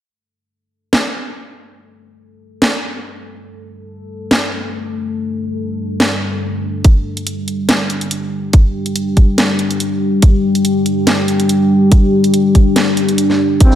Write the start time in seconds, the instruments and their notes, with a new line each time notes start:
0.08 ambient pad G3 D4 A4
0.93 snare
2.62 snare
4.31 snare
6.00 snare
6.84 ambient pad G4, kick, closed hi-hat
7.17 closed hi-hat
7.27 closed hi-hat
7.48 closed hi-hat
7.69 snare, closed hi-hat
7.90 closed hi-hat
8.01 closed hi-hat
8.11 closed hi-hat
8.53 kick, closed hi-hat
8.86 closed hi-hat
8.96 closed hi-hat
9.17 kick, closed hi-hat
9.38 snare, closed hi-hat
9.59 closed hi-hat
9.71 closed hi-hat
9.80 closed hi-hat
10.22 kick, closed hi-hat
10.55 closed hi-hat
10.65 closed hi-hat
10.86 closed hi-hat
11.07 snare, closed hi-hat
11.28 closed hi-hat
11.40 closed hi-hat
11.49 closed hi-hat
11.92 kick, closed hi-hat
12.24 closed hi-hat
12.34 closed hi-hat
12.55 kick, closed hi-hat
12.76 snare, closed hi-hat
12.97 closed hi-hat
13.09 closed hi-hat
13.18 closed hi-hat
13.30 snare
13.60 duduk C4, kick, closed hi-hat, riser
13.72 shaker